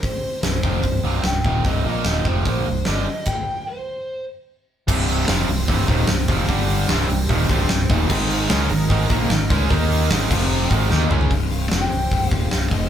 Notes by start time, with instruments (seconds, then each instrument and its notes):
Already playing: analog synth pad C4 G4 C5
0.02 lead electric guitar C5, kick, open hi-hat
0.42 fingered electric bass C1, distorted electric guitar C2 G2, lead electric guitar C5, snare, open hi-hat
0.63 fingered electric bass F1, distorted electric guitar F2 C3 F3, kick
0.83 fingered electric bass C1, distorted electric guitar C2 G2, kick, open hi-hat
1.03 fingered electric bass C1, distorted electric guitar C2 G2 C3, lead electric guitar F5
1.24 fingered electric bass C1, distorted electric guitar C2 G2, lead electric guitar G5, snare, open hi-hat
1.45 fingered electric bass D#1, distorted electric guitar D#2 A#2 D#3, kick
1.64 fingered electric bass C1, distorted electric guitar C2 G2 C3, lead electric guitar D#5, kick, open hi-hat
1.84 fingered electric bass A#1, distorted electric guitar A#2 F3 A#3, lead electric guitar D#5
2.05 fingered electric bass D#1, distorted electric guitar D#2 A#2 D#3, snare, open hi-hat
2.25 fingered electric bass F1, distorted electric guitar F2 C3 F3, lead electric guitar C5, kick
2.45 fingered electric bass A#1, distorted electric guitar A#2 F3 A#3, lead electric guitar C5, kick, open hi-hat
2.66 fingered electric bass C1, distorted electric guitar C2 G2
2.85 fingered electric bass G1, distorted electric guitar G2 D3 G3, lead electric guitar D#5, snare, open hi-hat
3.26 lead electric guitar G5, kick, crash
3.67 lead electric guitar C5
4.87 fingered electric bass C1, distorted electric guitar C2 G2 C3, analog synth pad C4 G4 C5, kick, crash
5.08 open hi-hat
5.28 fingered electric bass F1, distorted electric guitar F2 C3 F3, snare, open hi-hat
5.48 fingered electric bass C1, distorted electric guitar C2 G2, open hi-hat
5.68 fingered electric bass C1, distorted electric guitar C2 G2 C3, kick, open hi-hat
5.88 fingered electric bass D#1, distorted electric guitar D#2 A#2 D#3, kick, open hi-hat
6.07 fingered electric bass C1, distorted electric guitar C2 G2, snare, open hi-hat
6.28 fingered electric bass F1, distorted electric guitar F2 C3 F3, kick, open hi-hat
6.48 fingered electric bass G1, distorted electric guitar G2 D3 G3, analog synth pad G3 D4, kick, open hi-hat
6.69 open hi-hat
6.89 fingered electric bass C1, distorted electric guitar C2 G2 C3, analog synth pad C4 C5, snare, open hi-hat
7.10 fingered electric bass C1, distorted electric guitar C2 G2, open hi-hat
7.29 fingered electric bass D#1, distorted electric guitar D#2 A#2 D#3, kick, open hi-hat
7.49 fingered electric bass C1, distorted electric guitar C2 G2 C3, kick, open hi-hat
7.69 fingered electric bass C1, distorted electric guitar C2 G2, snare, open hi-hat
7.89 fingered electric bass D#1, distorted electric guitar D#2 A#2 D#3, kick, open hi-hat
8.09 fingered electric bass G#1, distorted electric guitar G#2 D#3 G#3, analog synth pad G#3 D#4 A#4, kick, crash
8.30 open hi-hat
8.50 fingered electric bass C#2, distorted electric guitar C#3 G#3 C#4, snare, open hi-hat
8.69 fingered electric bass G#1, distorted electric guitar G#2 D#3, open hi-hat
8.90 fingered electric bass G#1, distorted electric guitar G#2 D#3 G#3, kick, open hi-hat
9.10 fingered electric bass A#1, distorted electric guitar A#2 F3 A#3, kick, open hi-hat
9.30 fingered electric bass G#1, distorted electric guitar G#2 D#3, snare, open hi-hat
9.49 fingered electric bass C#2, distorted electric guitar C#3 G#3 C#4, kick, open hi-hat
9.70 fingered electric bass D#2, distorted electric guitar D#3 A#3 D#4, analog synth pad F5, kick, open hi-hat
9.91 open hi-hat
10.10 fingered electric bass G#1, distorted electric guitar G#2 D#3 G#3, analog synth pad G#3, snare, open hi-hat
10.30 fingered electric bass F1, distorted electric guitar F2 C3 F3, analog synth pad F3 C4 G4, kick, crash
10.70 fingered electric bass G#1, distorted electric guitar G#2 D#3 G#3, analog synth pad G#3 D#4 A#4, kick, open hi-hat
10.90 fingered electric bass D#2, distorted electric guitar D#3 A#3 D#4, snare
11.02 high tom
11.10 fingered electric bass C#2, distorted electric guitar C#3 G#3 C#4, mid tom
11.21 floor tom
11.30 fingered electric bass C1, distorted electric guitar C2 G2 C3, analog synth pad C4 G4 C5, kick, open hi-hat
11.51 lead electric guitar F5, open hi-hat
11.70 fingered electric bass F1, distorted electric guitar F2 C3 F3, lead electric guitar G5, snare, open hi-hat
11.91 fingered electric bass C1, distorted electric guitar C2 G2, open hi-hat
12.11 fingered electric bass C1, distorted electric guitar C2 G2 C3, kick, open hi-hat
12.29 fingered electric bass D#1, distorted electric guitar D#2 A#2 D#3, lead electric guitar F5, kick, open hi-hat
12.51 fingered electric bass C1, distorted electric guitar C2 G2, lead electric guitar F5, snare, open hi-hat
12.71 fingered electric bass F1, distorted electric guitar F2 C3 F3, lead electric guitar D#5, kick, open hi-hat